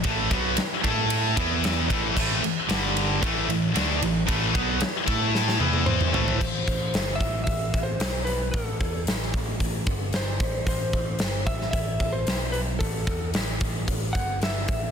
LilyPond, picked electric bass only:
\new Staff \with { instrumentName = "Picked electric bass" } { \clef bass \time 4/4 \key e \phrygian \tempo 4 = 112 a,,8 b,,8 r8 a,4 e,4 a,,8 | a,,8 r8 g,,4 a,,8 a,,8 d,8 a,,8 | a,,8 b,,8 r8 a,4 e,4 a,,8 | \key a \dorian a,,8 a,,8 g,,8 a,,8 a,,8 a,,8 b,,4 |
a,,8 e,8 a,,8 a,,8 a,,8 g,,4 a,,8 | a,,8 a,,8 g,,8 a,,8 a,,8 a,,8 b,,4 | a,,8 e,8 a,,8 a,,8 a,,8 g,,4 a,,8 | }